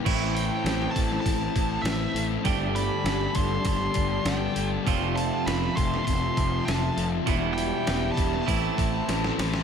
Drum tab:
CC |x---------------|----------------|----------------|----------------|
HH |--o-o-o-o-o-o-o-|o-o-o-o-o-o-o-o-|o-o-o-o-o-o-o-o-|o-o-o-o-o-o-o-o-|
SD |----oo-o----o---|----oo------o---|----oo-o----o---|----o--o----oooo|
BD |o-----o-o-o-----|o-----o-o-o-----|o-----o-o-o-----|o-----o-o-o-----|